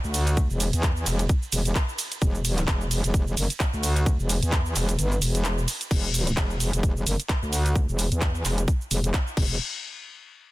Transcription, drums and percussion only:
0.04 cabasa soft
0.14 open hi-hat loud
0.14 ride medium
0.14 cabasa medium
0.27 closed hi-hat medium
0.27 cabasa soft
0.37 kick loud
0.37 closed hi-hat medium
0.37 cabasa soft
0.50 cabasa soft
0.60 open hi-hat loud
0.60 ride medium
0.60 cabasa medium
0.73 closed hi-hat medium
0.73 cabasa soft
0.83 kick loud
0.83 clap loud
0.83 closed hi-hat medium
0.83 cabasa soft
0.96 cabasa soft
1.06 clap soft
1.06 open hi-hat loud
1.06 ride medium
1.06 cabasa medium
1.19 closed hi-hat medium
1.19 cabasa soft
1.29 kick loud
1.29 closed hi-hat soft
1.29 cabasa soft
1.43 cabasa soft
1.52 open hi-hat loud
1.52 ride medium
1.52 cabasa medium
1.65 closed hi-hat medium
1.65 cabasa soft
1.75 kick loud
1.75 clap loud
1.75 closed hi-hat medium
1.75 cabasa soft
1.89 cabasa soft
1.99 open hi-hat loud
1.99 ride medium
1.99 cabasa medium
2.12 closed hi-hat medium
2.12 cabasa soft
2.22 kick loud
2.22 closed hi-hat medium
2.22 cabasa soft
2.35 cabasa soft
2.45 open hi-hat loud
2.45 ride medium
2.45 cabasa medium
2.58 clap soft
2.58 closed hi-hat medium
2.58 cabasa soft
2.68 kick loud
2.68 clap loud
2.68 closed hi-hat medium
2.68 cabasa medium
2.81 cabasa soft
2.91 open hi-hat loud
2.91 ride medium
2.91 cabasa medium
3.04 closed hi-hat medium
3.04 cabasa soft
3.14 kick loud
3.14 closed hi-hat medium
3.14 cabasa soft
3.27 cabasa soft
3.37 open hi-hat loud
3.37 ride medium
3.37 cabasa medium
3.50 closed hi-hat medium
3.50 cabasa soft
3.60 kick loud
3.60 clap loud
3.60 closed hi-hat medium
3.60 cabasa soft
3.74 cabasa soft
3.83 open hi-hat loud
3.83 ride medium
3.83 cabasa medium
3.96 closed hi-hat medium
3.96 cabasa soft
4.06 kick loud
4.06 closed hi-hat medium
4.06 cabasa soft
4.20 cabasa soft
4.29 open hi-hat loud
4.29 ride medium
4.29 cabasa medium
4.43 closed hi-hat medium
4.43 cabasa soft
4.52 kick loud
4.52 clap loud
4.52 closed hi-hat medium
4.52 cabasa soft
4.66 cabasa soft
4.76 clap soft
4.76 open hi-hat loud
4.76 ride medium
4.76 cabasa medium
4.89 closed hi-hat medium
4.89 cabasa soft
4.99 closed hi-hat medium
4.99 cabasa soft
5.12 cabasa soft
5.22 open hi-hat loud
5.22 ride medium
5.22 cabasa medium
5.35 closed hi-hat medium
5.35 cabasa soft
5.45 clap loud
5.45 closed hi-hat medium
5.45 cabasa soft
5.58 cabasa soft
5.68 open hi-hat loud
5.68 ride medium
5.68 cabasa medium
5.81 closed hi-hat medium
5.81 cabasa soft
5.91 kick loud
5.91 closed hi-hat medium
5.91 crash loud
5.91 cabasa soft
6.04 cabasa soft
6.14 open hi-hat loud
6.14 cabasa medium
6.27 closed hi-hat medium
6.27 cabasa soft
6.37 kick loud
6.37 clap loud
6.37 closed hi-hat medium
6.37 cabasa soft
6.51 cabasa soft
6.60 open hi-hat loud
6.60 cabasa medium
6.73 closed hi-hat medium
6.73 cabasa soft
6.83 kick loud
6.83 closed hi-hat medium
6.83 cabasa soft
6.97 cabasa soft
7.07 open hi-hat loud
7.07 cabasa medium
7.20 closed hi-hat medium
7.20 cabasa soft
7.29 kick loud
7.29 clap loud
7.29 closed hi-hat medium
7.29 cabasa soft
7.43 cabasa soft
7.53 open hi-hat loud
7.53 cabasa medium
7.66 closed hi-hat medium
7.66 cabasa soft
7.76 kick loud
7.76 closed hi-hat medium
7.76 cabasa soft
7.89 cabasa soft
7.99 open hi-hat loud
7.99 cabasa medium
8.12 closed hi-hat medium
8.12 cabasa soft
8.22 kick loud
8.22 clap loud
8.22 closed hi-hat medium
8.22 cabasa soft
8.35 cabasa soft
8.45 clap soft
8.45 open hi-hat loud
8.45 cabasa medium
8.58 closed hi-hat medium
8.58 cabasa soft
8.68 kick loud
8.68 closed hi-hat soft
8.68 cabasa soft
8.81 cabasa soft
8.91 open hi-hat loud
8.91 cabasa medium
9.04 closed hi-hat medium
9.04 cabasa soft
9.14 kick loud
9.14 clap loud
9.14 closed hi-hat medium
9.14 cabasa soft
9.27 cabasa soft
9.37 kick loud
9.37 crash medium

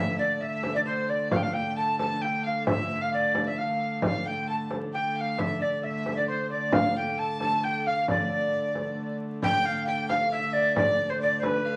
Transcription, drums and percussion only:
0.18 frame drum soft
0.63 frame drum medium
1.31 frame drum medium
1.54 frame drum soft
1.99 frame drum medium
2.67 frame drum loud
3.12 frame drum soft
3.35 frame drum medium
4.02 frame drum medium
4.26 frame drum soft
4.71 frame drum medium
5.39 frame drum medium
5.61 frame drum soft
6.06 frame drum medium
6.72 frame drum medium
6.96 frame drum soft
7.40 frame drum medium
8.08 frame drum medium
8.53 frame drum soft
8.75 frame drum medium
9.43 frame drum medium
9.65 frame drum soft
10.09 frame drum medium
10.76 frame drum medium
10.99 frame drum soft
11.43 frame drum medium

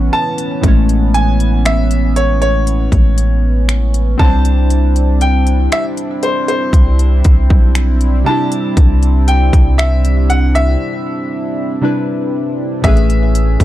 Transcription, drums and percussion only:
0.38 closed hi-hat medium
0.63 kick loud
0.63 closed hi-hat medium
0.89 closed hi-hat soft
1.14 closed hi-hat medium
1.40 closed hi-hat soft
1.65 finger snap loud
1.65 closed hi-hat medium
1.91 closed hi-hat medium
2.16 closed hi-hat medium
2.42 closed hi-hat soft
2.67 closed hi-hat medium
2.92 kick medium
2.92 closed hi-hat soft
3.18 closed hi-hat medium
3.69 finger snap loud
3.69 closed hi-hat medium
3.94 closed hi-hat medium
4.20 kick loud
4.45 closed hi-hat medium
4.70 closed hi-hat medium
4.96 closed hi-hat soft
5.21 closed hi-hat medium
5.47 closed hi-hat medium
5.72 finger snap loud
5.72 closed hi-hat medium
5.97 closed hi-hat medium
6.23 closed hi-hat medium
6.48 closed hi-hat soft
6.73 kick medium
6.73 closed hi-hat medium
6.99 closed hi-hat medium
7.24 kick medium
7.24 closed hi-hat medium
7.50 kick medium
7.75 finger snap loud
7.75 closed hi-hat medium
8.01 closed hi-hat soft
8.52 closed hi-hat medium
8.77 kick loud
8.77 closed hi-hat medium
9.03 closed hi-hat medium
9.28 closed hi-hat medium
9.53 kick loud
9.53 closed hi-hat medium
9.79 finger snap loud
9.79 closed hi-hat medium
10.05 closed hi-hat medium
10.30 closed hi-hat medium
10.55 closed hi-hat medium
12.84 kick loud
12.84 closed hi-hat medium
12.97 closed hi-hat soft
13.10 closed hi-hat medium
13.35 closed hi-hat medium
13.60 kick loud
13.60 closed hi-hat soft

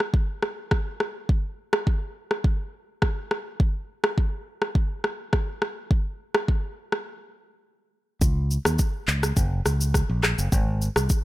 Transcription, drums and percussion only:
0.00 cross-stick medium
0.14 kick loud
0.43 cross-stick medium
0.71 kick medium
0.71 cross-stick medium
1.00 cross-stick medium
1.29 kick loud
1.73 cross-stick loud
1.87 kick medium
2.31 cross-stick medium
2.44 kick loud
3.02 kick medium
3.02 cross-stick medium
3.31 cross-stick medium
3.60 kick loud
4.04 cross-stick loud
4.18 kick medium
4.62 cross-stick medium
4.75 kick loud
5.04 cross-stick medium
5.33 kick medium
5.33 cross-stick medium
5.62 cross-stick medium
5.91 kick loud
6.35 cross-stick loud
6.48 kick medium
6.92 cross-stick medium
8.21 kick loud
8.21 shaker medium
8.51 shaker medium
8.65 cross-stick loud
8.65 shaker medium
8.78 kick medium
8.78 shaker medium
9.08 clap medium
9.08 shaker medium
9.23 cross-stick medium
9.23 shaker medium
9.37 kick loud
9.37 shaker medium
9.66 cross-stick medium
9.66 shaker medium
9.81 shaker medium
9.94 kick medium
9.94 cross-stick medium
9.94 shaker medium
10.23 cross-stick loud
10.23 clap medium
10.23 shaker soft
10.38 shaker medium
10.52 kick loud
10.52 shaker medium
10.82 shaker medium
10.96 cross-stick loud
10.96 shaker medium
11.09 kick medium
11.09 shaker medium

